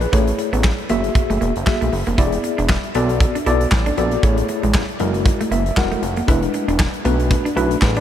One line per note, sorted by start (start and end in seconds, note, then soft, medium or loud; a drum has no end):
0.01 0.12 G#4 medium
0.01 0.26 B4 medium
0.01 closed hi-hat medium
0.12 0.33 A1 loud
0.12 0.75 A3 medium
0.12 0.25 A3 medium
0.12 0.75 E4 medium
0.12 0.76 G#4 medium
0.12 0.76 C#5 medium
0.12 kick loud
0.12 closed hi-hat medium
0.27 closed hi-hat medium
0.39 muted clean electric guitar stroke soft
0.39 closed hi-hat medium
0.53 0.73 A1 loud
0.53 0.62 B3 medium
0.53 closed hi-hat soft
0.64 kick loud
0.64 snare loud
0.64 clap loud
0.78 closed hi-hat soft
0.89 1.10 F#1 medium
0.89 1.52 A#3 medium
0.89 1.02 A#3 medium
0.89 1.53 F#4 medium
0.89 1.53 G#4 medium
0.89 1.53 E5 medium
0.89 closed hi-hat medium
1.04 closed hi-hat soft
1.15 muted clean electric guitar stroke soft
1.15 kick loud
1.15 closed hi-hat medium
1.30 1.38 F#1 medium
1.30 1.39 A3 medium
1.30 closed hi-hat medium
1.41 1.52 E1 medium
1.41 1.53 A#3 medium
1.41 closed hi-hat medium
1.56 1.64 F#1 medium
1.56 closed hi-hat medium
1.66 1.93 A#3 medium
1.66 1.93 F#4 medium
1.66 1.93 G#4 medium
1.66 1.93 E5 medium
1.66 kick loud
1.66 snare loud
1.66 clap medium
1.81 1.90 A#1 medium
1.81 1.90 A3 medium
1.81 closed hi-hat medium
1.93 2.04 F#1 medium
1.93 muted clean electric guitar stroke soft
1.93 open hi-hat medium
2.07 2.16 F1 medium
2.07 2.16 A#3 medium
2.07 closed hi-hat medium
2.18 2.38 E1 loud
2.18 2.70 B3 medium
2.18 2.30 E4 medium
2.18 2.70 E4 medium
2.18 2.25 G4 medium
2.18 2.70 D5 medium
2.18 kick medium
2.18 closed hi-hat medium
2.24 2.73 G#4 medium
2.32 closed hi-hat medium
2.44 muted clean electric guitar stroke soft
2.44 closed hi-hat medium
2.58 2.78 E1 medium
2.58 2.67 D4 medium
2.58 closed hi-hat soft
2.69 kick loud
2.69 snare loud
2.69 clap loud
2.83 closed hi-hat soft
2.95 3.26 B1 loud
2.95 3.37 B3 medium
2.95 3.07 B3 medium
2.95 3.37 F#4 medium
2.95 3.37 A4 medium
2.95 3.37 D5 medium
2.95 closed hi-hat medium
3.09 closed hi-hat medium
3.20 muted clean electric guitar stroke soft
3.20 kick loud
3.20 closed hi-hat medium
3.35 3.44 D4 medium
3.35 closed hi-hat medium
3.46 3.66 B1 medium
3.46 3.66 B3 loud
3.46 3.58 E4 medium
3.46 3.66 F#4 medium
3.46 3.67 A4 medium
3.46 3.67 D5 loud
3.46 closed hi-hat medium
3.61 closed hi-hat medium
3.71 3.92 A1 loud
3.71 muted clean electric guitar stroke soft
3.71 kick loud
3.71 snare loud
3.71 clap medium
3.86 3.95 D4 medium
3.86 3.92 A4 medium
3.86 3.92 D5 medium
3.86 closed hi-hat medium
3.97 4.17 A#1 medium
3.97 4.23 B3 medium
3.97 4.10 B3 medium
3.97 4.23 F#4 medium
3.97 4.23 A4 medium
3.97 4.23 D5 medium
3.97 closed hi-hat medium
4.11 closed hi-hat medium
4.23 4.43 A1 loud
4.23 4.86 A3 medium
4.23 4.35 A3 medium
4.23 4.86 E4 medium
4.23 4.86 G#4 medium
4.23 4.86 C#5 medium
4.23 kick loud
4.23 closed hi-hat medium
4.38 closed hi-hat medium
4.49 muted clean electric guitar stroke soft
4.49 closed hi-hat medium
4.63 4.83 A1 loud
4.63 4.73 G#3 medium
4.63 closed hi-hat medium
4.74 kick loud
4.74 snare loud
4.74 clap loud
4.89 closed hi-hat soft
5.00 5.31 F#1 loud
5.00 5.12 F#3 medium
5.00 5.63 G#3 medium
5.00 5.63 E4 medium
5.00 5.63 F#4 medium
5.00 5.63 A#4 medium
5.00 closed hi-hat medium
5.14 closed hi-hat soft
5.26 muted clean electric guitar stroke soft
5.26 kick loud
5.26 closed hi-hat medium
5.41 5.50 A3 medium
5.41 closed hi-hat medium
5.51 5.71 F#1 medium
5.51 5.63 A#3 medium
5.51 5.75 E5 medium
5.51 closed hi-hat medium
5.66 closed hi-hat medium
5.77 5.97 E1 medium
5.77 6.03 G#3 medium
5.77 6.03 E4 medium
5.77 6.03 F#4 medium
5.77 6.03 A#4 medium
5.77 6.25 F#5 medium
5.77 kick loud
5.77 snare loud
5.77 clap medium
5.92 6.01 A3 medium
5.92 closed hi-hat soft
6.03 6.22 F1 medium
6.03 muted clean electric guitar stroke soft
6.03 closed hi-hat medium
6.17 6.26 A#3 medium
6.17 closed hi-hat medium
6.28 6.48 E1 loud
6.28 6.80 G#3 medium
6.28 6.80 D4 medium
6.28 6.80 E4 medium
6.28 6.40 E4 medium
6.28 6.80 B4 medium
6.28 kick loud
6.28 closed hi-hat medium
6.43 closed hi-hat medium
6.54 muted clean electric guitar stroke soft
6.54 closed hi-hat medium
6.68 6.88 E1 loud
6.68 6.78 D4 medium
6.68 closed hi-hat medium
6.79 kick loud
6.79 snare loud
6.79 clap loud
6.94 closed hi-hat soft
7.05 7.36 B1 loud
7.05 7.47 A3 medium
7.05 7.17 B3 medium
7.05 7.47 D4 medium
7.05 7.47 F#4 medium
7.05 7.47 B4 loud
7.05 closed hi-hat medium
7.20 closed hi-hat soft
7.31 muted clean electric guitar stroke soft
7.31 kick loud
7.31 closed hi-hat medium
7.45 7.55 D4 medium
7.45 closed hi-hat medium
7.56 7.76 B1 medium
7.56 7.76 A3 medium
7.56 7.76 D4 medium
7.56 7.68 E4 medium
7.56 7.77 F#4 medium
7.56 7.77 B4 loud
7.56 closed hi-hat medium
7.71 closed hi-hat medium
7.81 8.00 A1 loud
7.81 7.96 G#4 medium
7.81 7.96 B4 medium
7.81 muted clean electric guitar stroke soft
7.81 kick loud
7.81 snare loud
7.81 clap medium
7.96 8.00 D4 medium
7.96 8.00 D5 medium
7.96 closed hi-hat medium